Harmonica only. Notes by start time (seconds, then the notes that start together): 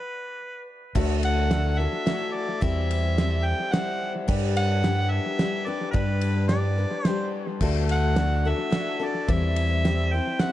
Already playing: B4
1.25 F#5
1.78 E5
2.34 D5
2.62 E5
3.45 G5
3.72 F#5
4.57 F#5
5.11 E5
5.67 D5
5.91 B4
6.48 D5
7.06 C5
7.91 F#5
8.49 E5
9.05 D5
9.31 E5
10.13 G5
10.41 F#5